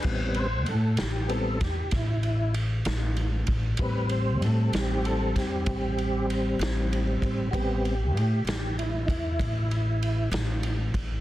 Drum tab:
CC |x-----------|------------|------------|
RD |-xxxxxxxxxxx|xxxxxxxxxxxx|xxxxxxxxxxxx|
SD |---o-oo--o--|---o-o---o--|---o-----o--|
BD |o----oo----o|o----oo----o|o----oo----o|